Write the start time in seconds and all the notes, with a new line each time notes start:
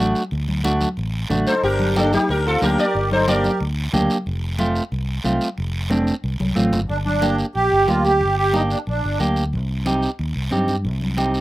0.00 A1 A3 D4 F#4
0.15 short guiro
0.31 D2, high conga, long guiro
0.48 high conga
0.64 A3 D4 F#4, high conga, short guiro
0.81 high conga, short guiro
0.97 A1, high conga, long guiro
1.30 A1 A3 D4 F#4, high conga, low conga, short guiro
1.47 D#4 A4 C5, short guiro
1.63 G1 D4 G4 A#4, high conga, long guiro
1.80 high conga
1.96 A#3 D4 G4 A4, high conga, short guiro
2.13 A#3 D#4 G4, high conga, short guiro
2.29 D2 D4 G4 A#4, high conga, long guiro
2.46 C4 F4 A4
2.61 D2 A#3 D4 G4 A#4, high conga, short guiro
2.78 G4 A#4 D5, short guiro
2.95 G1, high conga, long guiro
3.12 D#4 A4 C5, high conga
3.27 A#3 D4 G4 A#4 D5, high conga, short guiro
3.44 high conga, short guiro
3.60 D2, high conga, long guiro
3.93 D2 A#3 D4 G4, high conga, low conga, short guiro
4.10 short guiro
4.26 F1, high conga, long guiro
4.59 A3 C4 F4, high conga, short guiro
4.75 short guiro
4.92 C2, high conga, long guiro
5.24 C2 A3 C4 F4, high conga, short guiro
5.41 short guiro
5.58 F1, high conga, long guiro
5.90 A3 C4 D4, high conga, short guiro
6.07 short guiro
6.24 C2, high conga, long guiro
6.40 C2, high conga
6.56 A1 A3 C4 F4, high conga, short guiro
6.73 G1, low conga, short guiro
6.89 G1 D4, high conga, long guiro
7.05 D4, high conga
7.22 A#3 D4 G4, high conga, short guiro
7.39 short guiro
7.55 A#1 G4, high conga, long guiro
7.72 G1
7.88 D2 A#3 D4 F4 G4, high conga, short guiro
8.04 G4, high conga, short guiro
8.21 G1, high conga, long guiro
8.37 G4
8.53 A#3 D4 D#4 G4, high conga, short guiro
8.70 D4, short guiro
8.87 A#1 D4, high conga, long guiro
9.04 G1
9.20 D2 A#3 D4 G4, high conga, short guiro
9.36 short guiro
9.53 C2, high conga, long guiro
9.86 C4 D#4 G4, high conga, short guiro
10.03 short guiro
10.19 D#2, high conga, long guiro
10.36 C2
10.51 G2 C4 D#4 G4, high conga, short guiro
10.68 high conga, short guiro
10.85 C2, high conga, long guiro
11.01 high conga
11.17 C4 D#4 G4, high conga, short guiro
11.34 short guiro